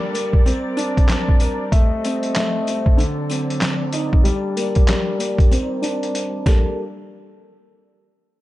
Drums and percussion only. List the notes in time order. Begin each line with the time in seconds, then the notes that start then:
0.15 closed hi-hat, sleigh bells
0.33 kick
0.46 closed hi-hat, sleigh bells
0.77 closed hi-hat, sleigh bells
0.97 kick, closed hi-hat
1.09 snare, clap, closed hi-hat, sleigh bells
1.29 kick
1.40 closed hi-hat, sleigh bells
1.72 kick, closed hi-hat, sleigh bells
2.04 closed hi-hat, sleigh bells
2.23 closed hi-hat
2.35 snare, clap, closed hi-hat, sleigh bells
2.67 closed hi-hat, sleigh bells
2.86 kick
2.98 closed hi-hat, sleigh bells
3.30 closed hi-hat, sleigh bells
3.50 closed hi-hat
3.61 snare, clap, closed hi-hat, sleigh bells
3.93 closed hi-hat, sleigh bells
4.13 kick
4.25 closed hi-hat, sleigh bells
4.57 closed hi-hat, sleigh bells
4.75 kick, closed hi-hat
4.88 snare, clap, closed hi-hat, sleigh bells
5.20 closed hi-hat, sleigh bells
5.38 kick, closed hi-hat
5.51 closed hi-hat, sleigh bells
5.83 closed hi-hat, sleigh bells
6.03 closed hi-hat
6.15 closed hi-hat, sleigh bells
6.46 kick, snare, sleigh bells